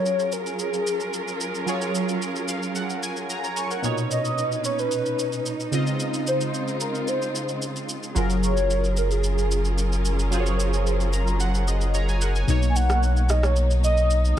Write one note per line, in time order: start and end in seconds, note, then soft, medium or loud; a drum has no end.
0.00 1.63 F#3 medium
0.00 3.80 F#3 medium
0.00 3.80 C#4 medium
0.00 1.63 F4 medium
0.00 3.80 F4 medium
0.00 1.64 G#4 medium
0.00 3.80 G#4 medium
0.00 1.68 A#4 medium
0.00 3.80 A#4 medium
0.00 0.34 C#5 loud
0.06 shaker medium
0.19 shaker soft
0.32 0.48 A#4 medium
0.32 shaker loud
0.46 1.41 G#4 medium
0.46 shaker soft
0.59 shaker medium
0.74 shaker soft
0.87 shaker medium
1.00 shaker soft
1.13 shaker medium
1.28 shaker medium
1.41 shaker medium
1.55 shaker soft
1.66 3.79 F#3 medium
1.66 3.80 F4 medium
1.66 3.80 G#4 medium
1.66 3.27 C#5 medium
1.66 shaker medium
1.81 shaker medium
1.95 shaker medium
2.09 shaker medium
2.22 shaker medium
2.36 shaker soft
2.48 2.74 F5 medium
2.48 shaker medium
2.63 shaker soft
2.75 3.01 F#5 medium
2.75 shaker medium
2.90 shaker soft
3.03 3.28 G#5 medium
3.03 shaker medium
3.16 shaker soft
3.30 3.43 G#5 medium
3.30 3.43 A#5 medium
3.30 shaker medium
3.44 3.56 C#5 medium
3.44 3.56 A#5 medium
3.44 shaker soft
3.57 3.70 G#5 medium
3.57 3.82 C#6 medium
3.57 shaker medium
3.71 3.97 A#4 medium
3.71 3.96 F#5 medium
3.71 shaker medium
3.82 5.69 A#2 medium
3.82 5.68 B2 medium
3.82 5.71 C#4 medium
3.82 8.12 D#4 medium
3.82 5.69 D#4 medium
3.82 5.71 B4 medium
3.82 5.70 C#5 medium
3.82 shaker medium
3.98 shaker medium
4.11 4.61 D#5 loud
4.11 shaker medium
4.25 shaker medium
4.38 shaker medium
4.52 shaker soft
4.64 4.81 C#5 medium
4.64 shaker loud
4.79 5.73 B4 medium
4.79 shaker soft
4.91 shaker medium
5.06 shaker soft
5.19 shaker medium
5.33 shaker soft
5.46 shaker medium
5.60 shaker medium
5.72 7.84 C#3 medium
5.72 8.14 C#3 medium
5.72 8.14 G#3 medium
5.72 8.14 C4 medium
5.72 7.85 C4 medium
5.72 8.14 F4 medium
5.72 7.86 F4 medium
5.72 7.86 D#5 medium
5.72 shaker medium
5.87 shaker medium
6.00 shaker medium
6.14 shaker medium
6.27 6.78 C5 loud
6.27 shaker medium
6.41 shaker medium
6.54 shaker medium
6.68 shaker soft
6.80 7.10 A#4 medium
6.80 shaker loud
6.95 shaker soft
7.08 7.62 C5 loud
7.08 shaker medium
7.22 shaker medium
7.35 shaker medium
7.49 shaker soft
7.62 shaker medium
7.76 shaker soft
7.89 shaker medium
8.03 shaker soft
8.15 12.45 F#1 medium
8.15 10.28 F#3 medium
8.15 12.45 F#3 medium
8.15 12.45 C#4 medium
8.15 10.28 F4 medium
8.15 12.45 F4 medium
8.15 12.45 G#4 medium
8.15 10.29 G#4 medium
8.15 12.45 A#4 medium
8.15 10.29 A#4 medium
8.15 shaker medium
8.30 shaker medium
8.43 8.94 C#5 loud
8.43 shaker medium
8.57 shaker medium
8.70 shaker medium
8.84 shaker soft
8.97 9.13 A#4 medium
8.97 shaker medium
9.11 10.06 G#4 medium
9.11 shaker soft
9.24 shaker medium
9.38 shaker soft
9.51 shaker medium
9.65 shaker soft
9.78 shaker medium
9.92 shaker soft
10.05 shaker medium
10.19 shaker medium
10.31 12.44 F#3 medium
10.31 12.44 F4 medium
10.31 12.45 G#4 medium
10.31 10.40 C5 medium
10.31 shaker medium
10.40 11.94 C#5 medium
10.46 shaker medium
10.60 shaker medium
10.73 shaker medium
10.87 shaker medium
11.00 shaker soft
11.13 11.39 A#5 medium
11.13 shaker loud
11.27 shaker soft
11.40 11.66 F#5 medium
11.40 shaker medium
11.55 shaker soft
11.68 11.93 D#5 medium
11.68 shaker medium
11.81 shaker soft
11.94 12.08 C#5 medium
11.94 12.08 A#5 medium
11.94 shaker medium
12.09 12.21 G#5 medium
12.09 shaker medium
12.21 12.35 A#4 medium
12.21 12.35 F#5 medium
12.21 shaker medium
12.36 12.61 G#5 medium
12.36 shaker medium
12.47 14.34 B1 medium
12.47 14.33 B2 medium
12.47 14.36 B2 medium
12.47 14.34 A#3 medium
12.47 14.36 A#3 medium
12.47 14.39 D#4 medium
12.47 14.34 D#4 medium
12.47 14.35 C#5 medium
12.47 shaker medium
12.62 shaker medium
12.69 12.77 G#5 medium
12.76 13.32 F#5 loud
12.76 shaker medium
12.90 cross-stick loud
12.90 shaker medium
13.03 shaker medium
13.17 shaker soft
13.29 13.46 D#5 loud
13.29 cross-stick medium
13.29 shaker loud
13.43 13.71 C#5 medium
13.43 cross-stick loud
13.43 shaker soft
13.56 shaker medium
13.71 shaker medium
13.84 14.39 D#5 loud
13.84 shaker medium
13.97 shaker soft
14.10 shaker medium
14.25 shaker soft